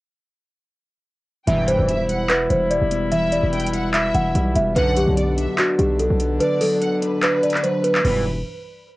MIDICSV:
0, 0, Header, 1, 8, 480
1, 0, Start_track
1, 0, Key_signature, 1, "minor"
1, 0, Tempo, 410959
1, 1720, Time_signature, 4, 2, 24, 8
1, 10473, End_track
2, 0, Start_track
2, 0, Title_t, "Violin section"
2, 0, Program_c, 0, 48
2, 1720, Note_on_c, 0, 79, 94
2, 2171, Note_off_c, 0, 79, 0
2, 2199, Note_on_c, 0, 76, 87
2, 2428, Note_off_c, 0, 76, 0
2, 2440, Note_on_c, 0, 78, 82
2, 2668, Note_off_c, 0, 78, 0
2, 3640, Note_on_c, 0, 76, 109
2, 4092, Note_off_c, 0, 76, 0
2, 4120, Note_on_c, 0, 79, 97
2, 4349, Note_off_c, 0, 79, 0
2, 4360, Note_on_c, 0, 78, 84
2, 4588, Note_off_c, 0, 78, 0
2, 4599, Note_on_c, 0, 76, 100
2, 5051, Note_off_c, 0, 76, 0
2, 5560, Note_on_c, 0, 78, 126
2, 6011, Note_off_c, 0, 78, 0
2, 6039, Note_on_c, 0, 74, 91
2, 6268, Note_off_c, 0, 74, 0
2, 6279, Note_on_c, 0, 76, 88
2, 6508, Note_off_c, 0, 76, 0
2, 7482, Note_on_c, 0, 74, 105
2, 7933, Note_off_c, 0, 74, 0
2, 7957, Note_on_c, 0, 78, 78
2, 8187, Note_off_c, 0, 78, 0
2, 8199, Note_on_c, 0, 71, 94
2, 9353, Note_off_c, 0, 71, 0
2, 9402, Note_on_c, 0, 71, 90
2, 9624, Note_off_c, 0, 71, 0
2, 10473, End_track
3, 0, Start_track
3, 0, Title_t, "Celesta"
3, 0, Program_c, 1, 8
3, 1722, Note_on_c, 1, 76, 80
3, 1946, Note_off_c, 1, 76, 0
3, 1960, Note_on_c, 1, 72, 73
3, 2637, Note_off_c, 1, 72, 0
3, 2678, Note_on_c, 1, 71, 87
3, 2903, Note_off_c, 1, 71, 0
3, 2922, Note_on_c, 1, 72, 76
3, 3146, Note_off_c, 1, 72, 0
3, 3157, Note_on_c, 1, 74, 93
3, 3610, Note_off_c, 1, 74, 0
3, 3641, Note_on_c, 1, 76, 83
3, 3865, Note_off_c, 1, 76, 0
3, 3880, Note_on_c, 1, 74, 76
3, 4557, Note_off_c, 1, 74, 0
3, 4600, Note_on_c, 1, 76, 79
3, 4825, Note_off_c, 1, 76, 0
3, 4844, Note_on_c, 1, 78, 83
3, 5293, Note_off_c, 1, 78, 0
3, 5323, Note_on_c, 1, 76, 84
3, 5546, Note_off_c, 1, 76, 0
3, 5559, Note_on_c, 1, 71, 93
3, 5784, Note_off_c, 1, 71, 0
3, 5802, Note_on_c, 1, 67, 75
3, 6478, Note_off_c, 1, 67, 0
3, 6523, Note_on_c, 1, 66, 76
3, 6746, Note_off_c, 1, 66, 0
3, 6757, Note_on_c, 1, 67, 84
3, 6983, Note_off_c, 1, 67, 0
3, 7000, Note_on_c, 1, 69, 72
3, 7452, Note_off_c, 1, 69, 0
3, 7481, Note_on_c, 1, 71, 97
3, 7705, Note_off_c, 1, 71, 0
3, 7720, Note_on_c, 1, 69, 85
3, 8397, Note_off_c, 1, 69, 0
3, 8444, Note_on_c, 1, 71, 86
3, 8667, Note_off_c, 1, 71, 0
3, 8683, Note_on_c, 1, 74, 89
3, 8906, Note_off_c, 1, 74, 0
3, 8919, Note_on_c, 1, 72, 76
3, 9144, Note_off_c, 1, 72, 0
3, 9158, Note_on_c, 1, 71, 84
3, 9384, Note_off_c, 1, 71, 0
3, 9401, Note_on_c, 1, 71, 89
3, 9624, Note_off_c, 1, 71, 0
3, 10473, End_track
4, 0, Start_track
4, 0, Title_t, "Woodwind section"
4, 0, Program_c, 2, 71
4, 1720, Note_on_c, 2, 47, 80
4, 1720, Note_on_c, 2, 64, 79
4, 1721, Note_on_c, 2, 55, 88
4, 5522, Note_off_c, 2, 55, 0
4, 5522, Note_off_c, 2, 64, 0
4, 5561, Note_on_c, 2, 50, 87
4, 5561, Note_on_c, 2, 62, 79
4, 9354, Note_off_c, 2, 47, 0
4, 9363, Note_off_c, 2, 50, 0
4, 9363, Note_off_c, 2, 62, 0
4, 9401, Note_on_c, 2, 59, 68
4, 9401, Note_on_c, 2, 64, 69
4, 9401, Note_on_c, 2, 71, 84
4, 9402, Note_on_c, 2, 55, 74
4, 9624, Note_off_c, 2, 55, 0
4, 9624, Note_off_c, 2, 59, 0
4, 9624, Note_off_c, 2, 64, 0
4, 9624, Note_off_c, 2, 71, 0
4, 10473, End_track
5, 0, Start_track
5, 0, Title_t, "Clean electric guitar"
5, 0, Program_c, 3, 27
5, 1717, Note_on_c, 3, 52, 102
5, 1952, Note_on_c, 3, 55, 85
5, 2199, Note_on_c, 3, 47, 88
5, 2449, Note_on_c, 3, 64, 80
5, 2681, Note_on_c, 3, 76, 109
5, 2909, Note_off_c, 3, 52, 0
5, 2924, Note_on_c, 3, 52, 75
5, 3152, Note_off_c, 3, 55, 0
5, 3166, Note_on_c, 3, 55, 84
5, 3400, Note_off_c, 3, 47, 0
5, 3402, Note_on_c, 3, 59, 87
5, 3629, Note_off_c, 3, 52, 0
5, 3643, Note_on_c, 3, 52, 99
5, 3645, Note_off_c, 3, 64, 0
5, 3870, Note_off_c, 3, 55, 0
5, 3881, Note_off_c, 3, 76, 0
5, 3884, Note_on_c, 3, 55, 81
5, 4106, Note_off_c, 3, 59, 0
5, 4120, Note_on_c, 3, 59, 89
5, 4355, Note_on_c, 3, 64, 95
5, 4598, Note_off_c, 3, 64, 0
5, 4603, Note_on_c, 3, 76, 103
5, 4829, Note_off_c, 3, 52, 0
5, 4843, Note_on_c, 3, 52, 83
5, 5066, Note_off_c, 3, 55, 0
5, 5080, Note_on_c, 3, 55, 96
5, 5313, Note_off_c, 3, 59, 0
5, 5327, Note_on_c, 3, 59, 87
5, 5555, Note_on_c, 3, 50, 92
5, 5560, Note_off_c, 3, 55, 0
5, 5562, Note_off_c, 3, 52, 0
5, 5562, Note_off_c, 3, 76, 0
5, 5564, Note_off_c, 3, 59, 0
5, 5799, Note_on_c, 3, 54, 86
5, 6039, Note_on_c, 3, 59, 87
5, 6276, Note_on_c, 3, 62, 86
5, 6517, Note_on_c, 3, 74, 106
5, 6748, Note_off_c, 3, 50, 0
5, 6762, Note_on_c, 3, 50, 83
5, 6980, Note_off_c, 3, 54, 0
5, 6994, Note_on_c, 3, 54, 84
5, 7222, Note_off_c, 3, 59, 0
5, 7236, Note_on_c, 3, 59, 88
5, 7461, Note_off_c, 3, 50, 0
5, 7475, Note_on_c, 3, 50, 95
5, 7478, Note_off_c, 3, 62, 0
5, 7719, Note_off_c, 3, 74, 0
5, 7720, Note_off_c, 3, 54, 0
5, 7734, Note_on_c, 3, 54, 86
5, 7949, Note_off_c, 3, 59, 0
5, 7963, Note_on_c, 3, 59, 83
5, 8201, Note_on_c, 3, 62, 89
5, 8446, Note_on_c, 3, 74, 104
5, 8669, Note_off_c, 3, 50, 0
5, 8683, Note_on_c, 3, 50, 76
5, 8911, Note_off_c, 3, 54, 0
5, 8925, Note_on_c, 3, 54, 92
5, 9139, Note_off_c, 3, 59, 0
5, 9153, Note_on_c, 3, 59, 87
5, 9386, Note_off_c, 3, 59, 0
5, 9391, Note_off_c, 3, 54, 0
5, 9395, Note_on_c, 3, 52, 89
5, 9397, Note_off_c, 3, 62, 0
5, 9401, Note_on_c, 3, 55, 79
5, 9402, Note_off_c, 3, 50, 0
5, 9403, Note_off_c, 3, 74, 0
5, 9406, Note_on_c, 3, 59, 81
5, 9413, Note_on_c, 3, 64, 100
5, 9624, Note_off_c, 3, 52, 0
5, 9624, Note_off_c, 3, 55, 0
5, 9624, Note_off_c, 3, 59, 0
5, 9624, Note_off_c, 3, 64, 0
5, 10473, End_track
6, 0, Start_track
6, 0, Title_t, "Analog polysynth"
6, 0, Program_c, 4, 90
6, 1721, Note_on_c, 4, 35, 94
6, 1721, Note_on_c, 4, 43, 96
6, 1721, Note_on_c, 4, 52, 120
6, 2177, Note_off_c, 4, 35, 0
6, 2177, Note_off_c, 4, 43, 0
6, 2177, Note_off_c, 4, 52, 0
6, 5561, Note_on_c, 4, 35, 93
6, 5561, Note_on_c, 4, 50, 109
6, 5562, Note_on_c, 4, 42, 96
6, 6017, Note_off_c, 4, 35, 0
6, 6017, Note_off_c, 4, 42, 0
6, 6017, Note_off_c, 4, 50, 0
6, 9401, Note_on_c, 4, 35, 91
6, 9401, Note_on_c, 4, 43, 90
6, 9401, Note_on_c, 4, 52, 103
6, 9624, Note_off_c, 4, 35, 0
6, 9624, Note_off_c, 4, 43, 0
6, 9624, Note_off_c, 4, 52, 0
6, 10473, End_track
7, 0, Start_track
7, 0, Title_t, "808-style bass"
7, 0, Program_c, 5, 38
7, 1721, Note_on_c, 5, 28, 113
7, 2073, Note_off_c, 5, 28, 0
7, 2088, Note_on_c, 5, 28, 106
7, 2887, Note_off_c, 5, 28, 0
7, 2921, Note_on_c, 5, 28, 101
7, 3273, Note_off_c, 5, 28, 0
7, 3288, Note_on_c, 5, 28, 100
7, 3979, Note_off_c, 5, 28, 0
7, 4009, Note_on_c, 5, 28, 102
7, 4808, Note_off_c, 5, 28, 0
7, 4841, Note_on_c, 5, 28, 103
7, 5071, Note_off_c, 5, 28, 0
7, 5081, Note_on_c, 5, 35, 107
7, 5311, Note_off_c, 5, 35, 0
7, 5321, Note_on_c, 5, 28, 110
7, 5551, Note_off_c, 5, 28, 0
7, 5561, Note_on_c, 5, 35, 115
7, 5914, Note_off_c, 5, 35, 0
7, 5928, Note_on_c, 5, 35, 103
7, 6389, Note_off_c, 5, 35, 0
7, 6761, Note_on_c, 5, 35, 105
7, 7114, Note_off_c, 5, 35, 0
7, 7128, Note_on_c, 5, 35, 99
7, 7467, Note_off_c, 5, 35, 0
7, 9400, Note_on_c, 5, 28, 110
7, 9847, Note_off_c, 5, 28, 0
7, 10473, End_track
8, 0, Start_track
8, 0, Title_t, "Drums"
8, 1720, Note_on_c, 9, 42, 78
8, 1837, Note_off_c, 9, 42, 0
8, 1959, Note_on_c, 9, 42, 93
8, 2076, Note_off_c, 9, 42, 0
8, 2201, Note_on_c, 9, 42, 69
8, 2318, Note_off_c, 9, 42, 0
8, 2441, Note_on_c, 9, 42, 71
8, 2558, Note_off_c, 9, 42, 0
8, 2680, Note_on_c, 9, 39, 113
8, 2680, Note_on_c, 9, 42, 83
8, 2797, Note_off_c, 9, 39, 0
8, 2797, Note_off_c, 9, 42, 0
8, 2921, Note_on_c, 9, 42, 67
8, 3038, Note_off_c, 9, 42, 0
8, 3161, Note_on_c, 9, 42, 79
8, 3278, Note_off_c, 9, 42, 0
8, 3400, Note_on_c, 9, 42, 86
8, 3516, Note_off_c, 9, 42, 0
8, 3640, Note_on_c, 9, 42, 81
8, 3757, Note_off_c, 9, 42, 0
8, 3879, Note_on_c, 9, 42, 94
8, 3995, Note_off_c, 9, 42, 0
8, 4120, Note_on_c, 9, 42, 44
8, 4200, Note_off_c, 9, 42, 0
8, 4200, Note_on_c, 9, 42, 59
8, 4280, Note_off_c, 9, 42, 0
8, 4280, Note_on_c, 9, 42, 72
8, 4361, Note_off_c, 9, 42, 0
8, 4361, Note_on_c, 9, 42, 71
8, 4478, Note_off_c, 9, 42, 0
8, 4600, Note_on_c, 9, 42, 82
8, 4601, Note_on_c, 9, 39, 117
8, 4717, Note_off_c, 9, 39, 0
8, 4717, Note_off_c, 9, 42, 0
8, 4841, Note_on_c, 9, 42, 66
8, 4958, Note_off_c, 9, 42, 0
8, 5081, Note_on_c, 9, 42, 78
8, 5198, Note_off_c, 9, 42, 0
8, 5320, Note_on_c, 9, 42, 83
8, 5437, Note_off_c, 9, 42, 0
8, 5561, Note_on_c, 9, 42, 78
8, 5677, Note_off_c, 9, 42, 0
8, 5799, Note_on_c, 9, 42, 98
8, 5916, Note_off_c, 9, 42, 0
8, 6041, Note_on_c, 9, 42, 69
8, 6158, Note_off_c, 9, 42, 0
8, 6281, Note_on_c, 9, 42, 72
8, 6398, Note_off_c, 9, 42, 0
8, 6520, Note_on_c, 9, 42, 85
8, 6521, Note_on_c, 9, 39, 120
8, 6637, Note_off_c, 9, 42, 0
8, 6638, Note_off_c, 9, 39, 0
8, 6761, Note_on_c, 9, 42, 65
8, 6878, Note_off_c, 9, 42, 0
8, 7001, Note_on_c, 9, 42, 80
8, 7118, Note_off_c, 9, 42, 0
8, 7240, Note_on_c, 9, 42, 83
8, 7357, Note_off_c, 9, 42, 0
8, 7480, Note_on_c, 9, 42, 81
8, 7597, Note_off_c, 9, 42, 0
8, 7720, Note_on_c, 9, 46, 95
8, 7836, Note_off_c, 9, 46, 0
8, 7961, Note_on_c, 9, 42, 72
8, 8078, Note_off_c, 9, 42, 0
8, 8202, Note_on_c, 9, 42, 71
8, 8319, Note_off_c, 9, 42, 0
8, 8441, Note_on_c, 9, 39, 117
8, 8441, Note_on_c, 9, 42, 83
8, 8558, Note_off_c, 9, 39, 0
8, 8558, Note_off_c, 9, 42, 0
8, 8681, Note_on_c, 9, 42, 54
8, 8761, Note_off_c, 9, 42, 0
8, 8761, Note_on_c, 9, 42, 56
8, 8809, Note_on_c, 9, 39, 74
8, 8841, Note_off_c, 9, 42, 0
8, 8841, Note_on_c, 9, 42, 57
8, 8921, Note_off_c, 9, 42, 0
8, 8921, Note_on_c, 9, 42, 79
8, 8926, Note_off_c, 9, 39, 0
8, 9038, Note_off_c, 9, 42, 0
8, 9159, Note_on_c, 9, 42, 83
8, 9276, Note_off_c, 9, 42, 0
8, 9288, Note_on_c, 9, 39, 96
8, 9401, Note_on_c, 9, 49, 92
8, 9405, Note_off_c, 9, 39, 0
8, 9517, Note_off_c, 9, 49, 0
8, 10473, End_track
0, 0, End_of_file